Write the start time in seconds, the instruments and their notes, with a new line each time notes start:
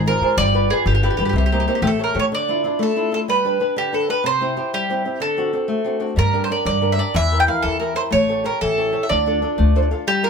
Already playing: upright bass G#1, nylon-string guitar D#3
0.06 nylon-string guitar F4 G#4 C5, mandolin A#4
0.21 upright bass G#2, nylon-string guitar F4 G#4 C5
0.37 upright bass G1, nylon-string guitar G3, mandolin D5
0.54 nylon-string guitar F4 G4 B4
0.70 nylon-string guitar F4 G4 B4, mandolin G#4
0.86 upright bass G1, nylon-string guitar D3, mandolin G4
0.95 mandolin G4
1.03 nylon-string guitar F4 G4 B4, mandolin G4
1.10 mandolin G4
1.17 upright bass G2, nylon-string guitar F4 G4 B4, mandolin G4
1.25 mandolin G4
1.29 upright bass C2, mandolin G4
1.36 nylon-string guitar C3, mandolin G4
1.46 mandolin G4
1.52 nylon-string guitar A#3 C4 D#4, mandolin G4
1.60 mandolin G4
1.68 nylon-string guitar A#3 C4 D#4, mandolin G4
1.75 mandolin G4
1.82 upright bass A1, nylon-string guitar A3, mandolin G4
1.87 mandolin A4
1.99 nylon-string guitar G4 A4 C#5
2.04 mandolin A#4
2.15 upright bass A2, nylon-string guitar G4 A4 C#5
2.19 mandolin C#5
2.32 nylon-string guitar D3, mandolin D5
2.49 nylon-string guitar D4 E4 F4
2.64 nylon-string guitar D4 E4 F4
2.79 nylon-string guitar A3, mandolin A4
2.96 nylon-string guitar D4 E4 F4
3.12 nylon-string guitar D4 E4 F4, mandolin A4
3.28 nylon-string guitar G3, mandolin B4
3.45 nylon-string guitar D4 G4 B4
3.60 nylon-string guitar D4 G4 B4
3.76 nylon-string guitar D3, mandolin G4
3.92 nylon-string guitar D4 G4 B4, mandolin A4
4.09 nylon-string guitar D4 G4 B4, mandolin B4
4.24 nylon-string guitar C3, mandolin C5
4.41 nylon-string guitar C4 E4 G4
4.57 nylon-string guitar C4 E4 G4
4.74 nylon-string guitar G3, mandolin G4
4.90 nylon-string guitar C4 E4 G4
5.05 nylon-string guitar C4 E4 G4
5.20 nylon-string guitar D3, mandolin A4
5.37 nylon-string guitar C4 D4 F#4
5.53 nylon-string guitar C4 D4 F#4
5.68 nylon-string guitar A3
5.85 nylon-string guitar C4 D4 F#4
6.00 nylon-string guitar C4 D4 F#4
6.16 upright bass G2, nylon-string guitar G3, mandolin A#4
6.33 nylon-string guitar D4 G4 A#4
6.44 mandolin C5
6.50 nylon-string guitar D4 G4 A#4, mandolin D5
6.65 upright bass G2, nylon-string guitar D3, mandolin D5
6.81 nylon-string guitar D4 G4 A#4
6.92 nylon-string guitar D4, mandolin E5
6.97 nylon-string guitar G4 A#4, mandolin D5
7.14 upright bass E2, nylon-string guitar E3, mandolin E5
7.31 nylon-string guitar E4 G4 A#4
7.40 mandolin G5
7.47 nylon-string guitar E4 G4 A#4, mandolin F5
7.62 upright bass E2, nylon-string guitar E3, mandolin A4
7.80 nylon-string guitar E4 G4 A#4, mandolin A#4
7.95 nylon-string guitar E4 G4 A#4, mandolin C5
8.11 upright bass A1, nylon-string guitar A3, mandolin C#5
8.29 nylon-string guitar G4 A4 C#5
8.44 nylon-string guitar G4 A4 C#5, mandolin A#4
8.61 upright bass A1, nylon-string guitar E3, mandolin A4
8.78 nylon-string guitar G4 A4 C#5
8.92 nylon-string guitar G4 A4 C#5
9.03 mandolin E5
9.09 upright bass D2, nylon-string guitar D3, mandolin D5
9.26 nylon-string guitar D4 F4 A4
9.42 nylon-string guitar D4 F4 A4
9.58 upright bass D2, nylon-string guitar A3
9.75 nylon-string guitar D4 F4 A4 C5
9.82 nylon-string guitar D5
9.91 nylon-string guitar D4 F4 A4 F5
10.07 nylon-string guitar G3, mandolin G4
10.23 nylon-string guitar F4 G4 A#4, mandolin A#4